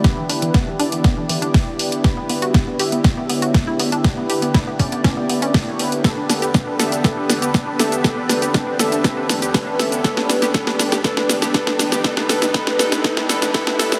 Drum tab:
HH |x-oxx-oxx-oxo-ox|x-oxx-oxx-oxx-ox|x-oxx-oxx-oxo-ox|x-oxx-oxx-oxx-ox|
SH |----------------|----------------|----------------|x-xxx-xxx-xxx-xx|
SD |o---o---o---o---|o---o---o---o---|o---o---o---o---|o-o-o-o-o-o-o-o-|
BD |o---o---o---o---|o---o---o---o---|o---o-o-o---o---|o---o---o---o---|

HH |x-oxx-oxx-oxo-ox|x-oxx-oxx-oxx-ox|x-oxx-oxx-oxo-ox|
SH |x-xxx-xxx-xxx-xx|x-xxx-xxx-xxx-xx|x-xxx-xxx-xxx-xx|
SD |o-o-o-o-o-o-o-o-|oooooooooooooooo|oooooooooooooooo|
BD |o---o---o---o---|o---o---o---o---|o---o---o---o---|